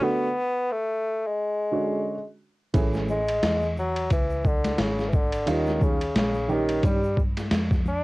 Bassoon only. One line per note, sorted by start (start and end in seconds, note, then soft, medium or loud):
0.04 0.73 B3 loud
0.72 1.28 A3 loud
1.26 2.27 G#3 medium
3.10 3.74 G#3 loud
3.79 4.10 F#3 loud
4.12 4.48 E3 medium
4.47 4.82 D3 medium
4.81 5.11 C#3 medium
5.10 5.17 E3 medium
5.15 5.51 D3 medium
5.49 5.85 D#3 loud
5.83 6.16 C#3 medium
6.18 6.53 C#3 medium
6.51 6.87 D#3 medium
6.86 7.19 G3 medium
7.88 8.04 D4 loud